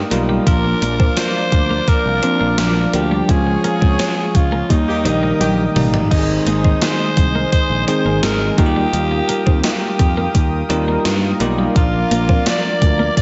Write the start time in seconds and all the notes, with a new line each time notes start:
Already playing: G3 A#3 D#4 G4 A#4 F5 G5 D#6
0.11 B1 G3 A#3 D#4 F4, closed hi-hat
0.29 G3
0.46 A#1 F3 A#3 D4 F4 A#4 D5 D6, kick, closed hi-hat
0.65 muted clean electric guitar stroke
0.82 A#1 A#3, closed hi-hat
1.00 C4, kick
1.17 D4 C5, snare, closed hi-hat, tambourine
1.52 D2, muted clean electric guitar stroke, kick, closed hi-hat
1.70 A#3
1.88 A#4, muted clean electric guitar stroke, kick, closed hi-hat
2.05 C2
2.22 F3 A#3 C4 D4 F4, closed hi-hat
2.40 A#1 A#3
2.58 A#1 A#4, muted clean electric guitar stroke, snare, closed hi-hat, tambourine
2.93 D2 F3 A#3 D4 G4, closed hi-hat
3.11 G3
3.28 C#2 F3 G#3 C#4 F4 G#4 C#5 C#6, kick, closed hi-hat
3.47 muted clean electric guitar stroke
3.64 A#3 G#4, closed hi-hat
3.81 C#2 C4, kick
3.99 C#4, snare, closed hi-hat, tambourine
4.35 C#2 F4, muted clean electric guitar stroke, kick, closed hi-hat
4.52 A#3
4.69 D#2 D#3 G3 A#3 D#4 A#4 D#5 G5 D#6, muted clean electric guitar stroke, kick, closed hi-hat
4.88 D#3 A#3 G4
5.05 A#1 D#3 G3 A#3 C4 D#4, closed hi-hat
5.23 A#3
5.40 A#1 D#3 A#3 G4, muted clean electric guitar stroke, closed hi-hat, high tom
5.76 A1 D#3 G3 A#3 D#4, mid tom, open hi-hat
5.94 G3, floor tom
6.11 G#1 D#3 G#3 C4 D#4 G4 C5 D#5 G#5 D#6, kick, closed hi-hat, crash
6.19 G#4
6.29 muted clean electric guitar stroke
6.46 G#1 A#3 D#4, closed hi-hat
6.64 C4, kick
6.82 D#4 C5, snare, closed hi-hat, tambourine
7.17 C2, muted clean electric guitar stroke, kick, closed hi-hat
7.35 A#3
7.52 C5, muted clean electric guitar stroke, kick, closed hi-hat
7.70 A#1
7.87 D#3 G#3 C4 D#4 G#4 C5, closed hi-hat
8.05 G#1 A#3
8.23 G#1 A#4, muted clean electric guitar stroke, snare, closed hi-hat, tambourine
8.58 D#2 G3 A#3 D#4 F4 F#4 G4 A#4 F5 G5 D#6, kick, closed hi-hat
8.66 G4
8.76 G3
8.93 D#2, closed hi-hat
9.11 muted clean electric guitar stroke
9.29 A#3, closed hi-hat
9.46 D#2 C4, kick
9.64 D#4 G4, snare, closed hi-hat, tambourine
9.99 F2, muted clean electric guitar stroke, kick, closed hi-hat
10.17 A#3
10.35 D#2, muted clean electric guitar stroke, kick, closed hi-hat
10.69 D#2 G3 A#3 C4 D#4 F4 A#4, closed hi-hat
10.88 A#3
11.05 G2, muted clean electric guitar stroke, snare, closed hi-hat, tambourine
11.40 B1 G3 A#3 D#4 F4 G4, closed hi-hat
11.58 G3
11.75 A#1 F3 A#3 D4 F4 A#4 D5 D6, kick, closed hi-hat
11.94 muted clean electric guitar stroke
12.11 A#1 A#3, closed hi-hat
12.29 C4, kick
12.46 D4 D5, snare, closed hi-hat, tambourine
12.82 D2, muted clean electric guitar stroke, kick, closed hi-hat
12.99 A#3
13.17 D5, muted clean electric guitar stroke, kick, closed hi-hat